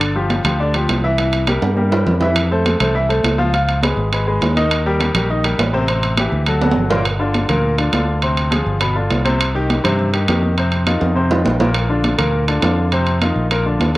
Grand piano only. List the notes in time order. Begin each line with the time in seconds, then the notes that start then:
Already playing: D3 D4 D5
0.15 F3 F4 G4
0.45 F3 F4 G4
0.60 D3 D4 D5
0.75 F3 F4 G4
1.04 E3 E4 E5
1.19 E3 E4 E5
1.47 G3 G4 A#4
1.76 G3 G4 A#4
1.91 G3 G4 A#4
2.21 E3 E4 E5
2.51 A3 A4 C5
2.80 A3 A4 C5
2.95 E3 E4 E5
3.09 A3 A4 C5
3.38 F3 F4 F5
3.53 F3 F4 F5
3.83 G#3 G#4 B4
4.13 G#3 G#4 B4
4.27 G#3 G#4 B4
4.57 D#3 D#4 D#5
4.86 G3 G4 A#4
5.16 G3 G4 A#4
5.30 D#3 D#4 D#5
5.44 G3 G4 A#4
5.73 C3 C4 C5
5.89 C3 C4 C5
6.18 E3 E4 G4
6.48 F#3 F#4 A4
6.62 F#3 F#4 A4
6.90 A#2 A#3 A#4
7.19 D3 D4 F4
7.49 A#2 A#3 A#4
7.78 D3 D4 F4
7.93 D3 D4 F4
8.23 C3 C4 C5
8.51 F3 F4 G#4
8.81 B2 B3 B4
8.95 D3 D4 F4
9.25 C3 C4 C5
9.55 D#3 D#4 G4
9.84 C3 C4 C5
10.13 D#3 D#4 G4
10.29 D#3 D#4 G4
10.58 C3 C4 C5
10.86 D#3 D#4 F4
11.15 C3 C4 C5
11.31 D#3 D#4 F4
11.60 A#2 A#3 A#4
11.89 D3 D4 F4
12.18 A#2 A#3 A#4
12.48 D3 D4 F4
12.63 D3 D4 F4
12.92 C3 C4 C5
13.22 D#3 D#4 F4
13.52 A#2 A#3 A#4
13.66 D3 D4 F4